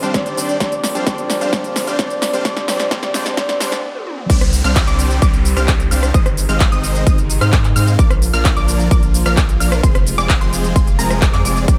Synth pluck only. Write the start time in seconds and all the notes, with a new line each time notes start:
4.30 D6
4.64 F6
4.87 D6
5.22 D6
5.57 F6
5.91 F6
6.14 D#6
6.49 F6
6.72 D#6
7.07 D#6
7.41 F6
7.76 F6
7.99 D6
8.33 F6
8.57 D6
8.91 D6
9.26 F6
9.60 F6
9.83 C6
10.18 D6
10.41 C6
10.76 C6
10.99 A#5
11.33 D6
11.45 D6
11.68 D6